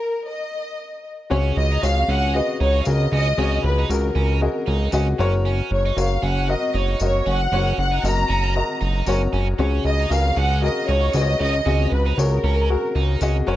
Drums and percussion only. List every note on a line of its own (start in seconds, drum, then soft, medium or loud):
1.83 tambourine medium
2.85 tambourine medium
3.90 tambourine medium
4.92 tambourine medium
5.98 tambourine medium
7.00 tambourine medium
8.05 tambourine medium
9.06 tambourine medium
10.11 tambourine medium
11.13 tambourine medium
12.19 tambourine medium
13.21 tambourine medium